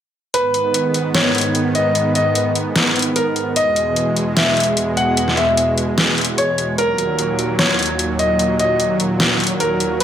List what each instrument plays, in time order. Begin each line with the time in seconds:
0.34 supersaw synth G#2 D#3 B3, grand piano B4, closed hi-hat
0.54 closed hi-hat
0.74 closed hi-hat
0.94 closed hi-hat
1.14 grand piano C#5, snare, closed hi-hat
1.35 closed hi-hat
1.38 closed hi-hat
1.41 closed hi-hat
1.55 closed hi-hat
1.75 grand piano D#5, closed hi-hat
1.95 closed hi-hat
2.15 grand piano D#5, closed hi-hat
2.35 closed hi-hat
2.55 closed hi-hat
2.76 snare, closed hi-hat
2.96 closed hi-hat
2.99 closed hi-hat
3.02 closed hi-hat
3.16 grand piano A#4, closed hi-hat
3.36 closed hi-hat
3.56 supersaw synth E2 B2 G#3, grand piano D#5, closed hi-hat
3.76 closed hi-hat
3.96 closed hi-hat
4.17 closed hi-hat
4.37 grand piano E5, snare, closed hi-hat
4.57 closed hi-hat
4.60 closed hi-hat
4.63 closed hi-hat
4.77 closed hi-hat
4.97 grand piano F#5, closed hi-hat
5.17 closed hi-hat
5.28 snare
5.37 grand piano E5, closed hi-hat
5.57 closed hi-hat
5.78 closed hi-hat
5.98 snare, closed hi-hat
6.18 closed hi-hat
6.21 closed hi-hat
6.25 closed hi-hat
6.38 grand piano C#5, closed hi-hat
6.58 closed hi-hat
6.78 supersaw synth D#2 A#2 F#3, grand piano A#4, closed hi-hat
6.98 closed hi-hat
7.19 closed hi-hat
7.39 closed hi-hat
7.59 grand piano C#5, snare, closed hi-hat
7.79 closed hi-hat
7.83 closed hi-hat
7.86 closed hi-hat
7.99 closed hi-hat
8.19 grand piano D#5, closed hi-hat
8.39 closed hi-hat
8.59 grand piano D#5, closed hi-hat
8.80 closed hi-hat
9.00 closed hi-hat
9.20 snare, closed hi-hat
9.40 closed hi-hat
9.44 closed hi-hat
9.47 closed hi-hat
9.60 grand piano A#4, closed hi-hat
9.80 closed hi-hat
10.00 supersaw synth B2 D#4, grand piano B4, closed hi-hat, riser